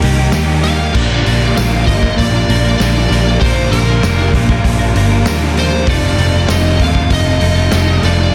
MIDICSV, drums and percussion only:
0, 0, Header, 1, 2, 480
1, 0, Start_track
1, 0, Key_signature, -2, "major"
1, 0, Tempo, 616016
1, 740, Time_signature, 4, 2, 24, 8
1, 6503, End_track
2, 0, Start_track
2, 0, Title_t, "Drums"
2, 16, Note_on_c, 9, 46, 73
2, 94, Note_off_c, 9, 46, 0
2, 251, Note_on_c, 9, 38, 101
2, 251, Note_on_c, 9, 46, 80
2, 255, Note_on_c, 9, 54, 94
2, 329, Note_off_c, 9, 38, 0
2, 329, Note_off_c, 9, 46, 0
2, 333, Note_off_c, 9, 54, 0
2, 495, Note_on_c, 9, 38, 35
2, 495, Note_on_c, 9, 46, 65
2, 573, Note_off_c, 9, 38, 0
2, 573, Note_off_c, 9, 46, 0
2, 738, Note_on_c, 9, 36, 124
2, 738, Note_on_c, 9, 49, 106
2, 816, Note_off_c, 9, 36, 0
2, 816, Note_off_c, 9, 49, 0
2, 984, Note_on_c, 9, 46, 64
2, 1062, Note_off_c, 9, 46, 0
2, 1226, Note_on_c, 9, 54, 89
2, 1227, Note_on_c, 9, 38, 124
2, 1227, Note_on_c, 9, 46, 84
2, 1304, Note_off_c, 9, 54, 0
2, 1305, Note_off_c, 9, 38, 0
2, 1305, Note_off_c, 9, 46, 0
2, 1459, Note_on_c, 9, 36, 85
2, 1463, Note_on_c, 9, 46, 64
2, 1537, Note_off_c, 9, 36, 0
2, 1541, Note_off_c, 9, 46, 0
2, 1580, Note_on_c, 9, 36, 93
2, 1658, Note_off_c, 9, 36, 0
2, 1701, Note_on_c, 9, 36, 97
2, 1705, Note_on_c, 9, 46, 75
2, 1779, Note_off_c, 9, 36, 0
2, 1783, Note_off_c, 9, 46, 0
2, 1946, Note_on_c, 9, 46, 66
2, 2024, Note_off_c, 9, 46, 0
2, 2183, Note_on_c, 9, 38, 111
2, 2183, Note_on_c, 9, 46, 79
2, 2191, Note_on_c, 9, 54, 91
2, 2261, Note_off_c, 9, 38, 0
2, 2261, Note_off_c, 9, 46, 0
2, 2269, Note_off_c, 9, 54, 0
2, 2433, Note_on_c, 9, 38, 33
2, 2433, Note_on_c, 9, 46, 57
2, 2510, Note_off_c, 9, 38, 0
2, 2510, Note_off_c, 9, 46, 0
2, 2660, Note_on_c, 9, 36, 111
2, 2663, Note_on_c, 9, 46, 95
2, 2738, Note_off_c, 9, 36, 0
2, 2741, Note_off_c, 9, 46, 0
2, 2904, Note_on_c, 9, 46, 63
2, 2982, Note_off_c, 9, 46, 0
2, 3142, Note_on_c, 9, 38, 107
2, 3142, Note_on_c, 9, 46, 84
2, 3147, Note_on_c, 9, 54, 80
2, 3220, Note_off_c, 9, 38, 0
2, 3220, Note_off_c, 9, 46, 0
2, 3225, Note_off_c, 9, 54, 0
2, 3380, Note_on_c, 9, 36, 82
2, 3386, Note_on_c, 9, 46, 72
2, 3457, Note_off_c, 9, 36, 0
2, 3464, Note_off_c, 9, 46, 0
2, 3499, Note_on_c, 9, 36, 90
2, 3577, Note_off_c, 9, 36, 0
2, 3619, Note_on_c, 9, 36, 103
2, 3622, Note_on_c, 9, 46, 90
2, 3696, Note_off_c, 9, 36, 0
2, 3700, Note_off_c, 9, 46, 0
2, 3862, Note_on_c, 9, 46, 69
2, 3940, Note_off_c, 9, 46, 0
2, 4097, Note_on_c, 9, 38, 115
2, 4097, Note_on_c, 9, 46, 87
2, 4104, Note_on_c, 9, 54, 93
2, 4175, Note_off_c, 9, 38, 0
2, 4175, Note_off_c, 9, 46, 0
2, 4182, Note_off_c, 9, 54, 0
2, 4342, Note_on_c, 9, 38, 35
2, 4342, Note_on_c, 9, 46, 62
2, 4420, Note_off_c, 9, 38, 0
2, 4420, Note_off_c, 9, 46, 0
2, 4575, Note_on_c, 9, 36, 121
2, 4577, Note_on_c, 9, 46, 87
2, 4653, Note_off_c, 9, 36, 0
2, 4655, Note_off_c, 9, 46, 0
2, 4819, Note_on_c, 9, 46, 62
2, 4897, Note_off_c, 9, 46, 0
2, 5054, Note_on_c, 9, 38, 113
2, 5054, Note_on_c, 9, 46, 83
2, 5065, Note_on_c, 9, 54, 91
2, 5132, Note_off_c, 9, 38, 0
2, 5132, Note_off_c, 9, 46, 0
2, 5143, Note_off_c, 9, 54, 0
2, 5296, Note_on_c, 9, 36, 89
2, 5296, Note_on_c, 9, 46, 67
2, 5373, Note_off_c, 9, 36, 0
2, 5374, Note_off_c, 9, 46, 0
2, 5415, Note_on_c, 9, 36, 92
2, 5493, Note_off_c, 9, 36, 0
2, 5535, Note_on_c, 9, 36, 96
2, 5536, Note_on_c, 9, 46, 82
2, 5613, Note_off_c, 9, 36, 0
2, 5614, Note_off_c, 9, 46, 0
2, 5773, Note_on_c, 9, 46, 69
2, 5851, Note_off_c, 9, 46, 0
2, 6013, Note_on_c, 9, 38, 110
2, 6013, Note_on_c, 9, 46, 80
2, 6018, Note_on_c, 9, 54, 85
2, 6091, Note_off_c, 9, 38, 0
2, 6091, Note_off_c, 9, 46, 0
2, 6096, Note_off_c, 9, 54, 0
2, 6257, Note_on_c, 9, 38, 32
2, 6257, Note_on_c, 9, 46, 60
2, 6335, Note_off_c, 9, 38, 0
2, 6335, Note_off_c, 9, 46, 0
2, 6503, End_track
0, 0, End_of_file